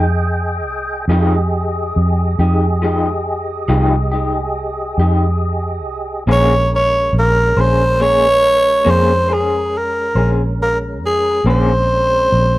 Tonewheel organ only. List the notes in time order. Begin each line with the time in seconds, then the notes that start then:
Already playing: G#4 D#5 G5
1.09 G4 G#4 D#5
6.27 G#3 C#4 A#4
11.44 G#3 C4 C#4